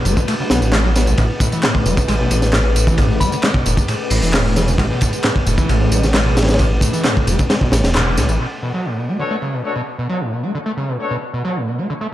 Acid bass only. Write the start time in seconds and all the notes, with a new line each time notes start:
0.05 A3
0.17 D3
0.28 A3
0.40 C#3
0.51 B3
0.73 A3
0.84 F#3
0.96 B3
1.07 B1
1.19 A2
1.41 A2
1.53 E3
1.64 G#2
1.75 A2
1.86 G#3
1.97 C#3
2.08 G#3
2.19 B2
2.31 A2
2.53 A2
2.76 A2
2.87 E3
2.98 G#2
3.10 A2
3.21 G#3
3.32 C#3
3.44 G#3
3.55 B2
3.66 A2
3.89 A2
4.11 A2
4.23 E3
4.33 G#2
4.45 A2
4.56 G#3
4.68 C#3
4.79 G#3
4.90 B2
5.02 A2
5.24 A2
5.46 A2
5.58 E3
5.69 G#2
5.80 A2
5.91 G#3
6.03 C#3
6.14 G#3
6.26 B2
6.37 A2
6.59 A2
6.82 A2
6.93 E3
7.05 G#2
7.16 A2
7.28 G#3
7.39 C#3
7.50 G#3
7.61 B2
7.72 A2
7.95 A2
8.18 A2
8.29 E3
8.40 B2
8.62 B2
8.74 F#3
8.85 A2
8.97 B2
9.08 A3
9.19 D3
9.31 A3
9.42 C#3
9.53 B2
9.76 B2
9.98 B2
10.09 F#3
10.20 A2
10.32 B2
10.43 A3
10.55 D3
10.66 A3
10.77 C#3
10.88 B2
11.11 B2
11.33 B2
11.45 F#3
11.56 A2
11.67 B2
11.78 A3
11.90 D3
12.01 A3